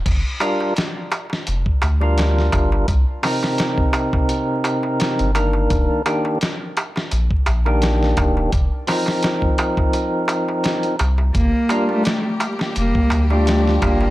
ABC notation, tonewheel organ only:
X:1
M:4/4
L:1/16
Q:"Swing 16ths" 1/4=85
K:Gm
V:1 name="Tonewheel organ"
z2 [G,DFB]2 z6 z [G,DFB]4- [G,DFB] | z2 [C,CEB]12 [E,B,DB]2- | [E,B,DB]2 [E,B,DG]2 z6 z [E,B,DG]4- [E,B,DG] | z2 [F,CEB]12 z2 |
z2 [G,DFB]2 z6 z [G,DFG]4- [G,DFG] |]